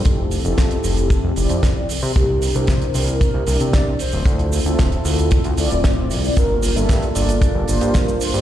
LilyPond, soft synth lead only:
\new Staff \with { instrumentName = "Soft synth lead" } { \time 4/4 \key g \dorian \tempo 4 = 114 a'8 r2. r8 | g'8. c''8. bes'8 bes'4 d''8 c''8~ | c''8 r2. r8 | bes'8. e''8. d''8 d''4 bes'8 r8 | }